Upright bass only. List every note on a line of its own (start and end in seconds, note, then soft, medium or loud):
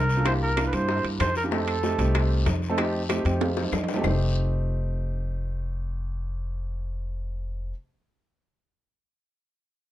0.00 0.67 C2 medium
0.73 1.02 G2 loud
1.04 1.19 G2 medium
1.20 1.93 F2 loud
1.98 2.43 C2 medium
2.46 3.19 F2 medium
3.25 3.69 F2 loud
3.72 4.00 F2 medium
4.04 7.71 F1 loud